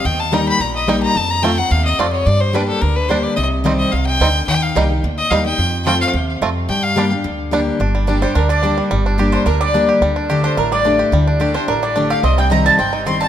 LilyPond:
<<
  \new Staff \with { instrumentName = "Fiddle" } { \time 4/4 \key g \minor \tempo 4 = 217 g''8 a''8 bes''8 b''8 bes''8 ees''8 g''8 bes''8 | a''8 bes''8 g''8 fis''8 f''8 ees''8 d''8 cis''8 | d''8 c''8 b'8 a'8 bes'8 b'8 c''8 d''8 | ees''8 r4 ees''8 f''8 g''4. |
g''8 f''8 r4. ees''8 f''8 g''8~ | g''4 g''8 f''8 r2 | g''8 f''4 r2 r8 | r4. c''8 bes'8 d''4 r8 |
r4. c''8 bes'8 d''4 r8 | r4. c''8 bes'8 d''4 r8 | r4. c''8 bes'8 d''4 f''8 | ees''8 g''8 bes''8 a''8 g''4 c'''8 a''8 | }
  \new Staff \with { instrumentName = "Mandolin" } { \time 4/4 \key g \minor r1 | r1 | r1 | r1 |
r1 | r1 | r1 | r4. c''8 bes'8 d''4 r8 |
r4. c''8 bes'8 d''4 r8 | r4. c''8 bes'8 d''4 r8 | r4. c''8 bes'8 d''4 f''8 | ees''8 g''8 bes''8 a''8 g''4 c'''8 a''8 | }
  \new Staff \with { instrumentName = "Five-string banjo" } { \time 4/4 \key g \minor r4 <g ees'>8 r4. <g ees'>8 r8 | r4 <a c' f'>8 r4. <a c' f'>8 r8 | r4 <g d'>8 r4. <g d'>8 r8 | r4 <g c' ees'>8 r4. <g c' ees'>8 r8 |
r4 <g ees'>8 r4. <g ees'>8 r8 | r4 <a c' f'>8 r4. <a c' f'>8 r8 | r4 <g d'>8 r4. <g d'>8 r8 | d'8 g8 d'8 g8 d'8 d'8 d'8 g8 |
g8 d'8 g'8 d'8 d'8 g8 d'8 g'8 | g8 d'8 g'8 d'8 d'8 g8 d'8 g'8 | g8 d'8 g'8 d'8 d'8 g8 d'8 g'8 | c'8 g8 ees'8 g8 c'8 ees'8 c'8 g8 | }
  \new Staff \with { instrumentName = "Steel-string acoustic guitar" } { \time 4/4 \key g \minor << { r4 <g bes ees' g'>4 r4 <g bes ees' g'>4 | r4 <f a c' f'>8 <c' f'>8 r2 | r4 <g bes d' g'>4 r4 <g bes d' g'>4 | r4 <ees g c' g'>4 r2 |
r4 <g bes ees' g'>8 <ees' g'>8 r4 <g bes ees' g'>8 <ees' g'>8 | r4 <f a c' f'>4 r2 | r4 <g bes d' g'>8 <d' g'>8 r4 <g bes d' g'>4 | r4 <g bes d' g'>8 <d' g'>8 r4 <g bes d' g'>4 |
r4 <g bes d' g'>4 r4 <g bes d' g'>4 | r4 <d a d' g'>4 r4 <d a d' g'>4 | r4 <d a d' g'>8 <d' g'>8 r4 <d a d' g'>4 | r4 <ees g c' g'>4 r4 <ees g c' g'>4 | } \\ { ees2 bes,2 | f,2 c4 f,4 | g,2 d2 | c2 c4 d4 |
ees2 bes,2 | f,2 c4 f,4 | g,2 d2 | g,2 d2 |
g,2 d2 | d2 a,2 | d2 a,2 | c2 g,2 | } >> }
  \new Staff \with { instrumentName = "Upright bass" } { \clef bass \time 4/4 \key g \minor ees,2 bes,,2 | f,2 ees,4 f,4 | g,2 d,2 | c,2 c,4 d,4 |
ees,4 c,4 d,4 ees,4 | f,2 ees,4 f,4 | g,2 d,2 | g,,2 d,2 |
g,,2 d,2 | d,2 a,,2 | d,2 a,,2 | c,2 g,,2 | }
>>